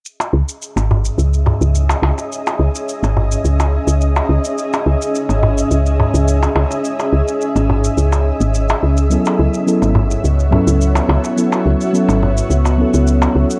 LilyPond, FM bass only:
\new Staff \with { instrumentName = "FM bass" } { \clef bass \time 4/4 \key cis \minor \tempo 4 = 106 r8 cis,16 r8 gis,,8 r16 cis,8 r16 cis,8 r16 cis,16 r16 | r8 cis,16 r8 gis,,8 r16 cis,8 r16 cis,8 r16 cis,16 r16 | r8 cis,16 r8 gis,,8 r16 cis,8 r16 cis,8 r16 cis,16 r16 | r8 cis,16 r8 gis,,8 r16 cis,8 r16 gis,,8 r16 cis,8 |
r8 cis,16 r8 gis,,8 r16 cis,8 r16 cis,8 r16 cis,16 r16 | r8 cis,16 r8 gis,,8 r16 cis,8 r16 cis,8 r16 cis,16 r16 | }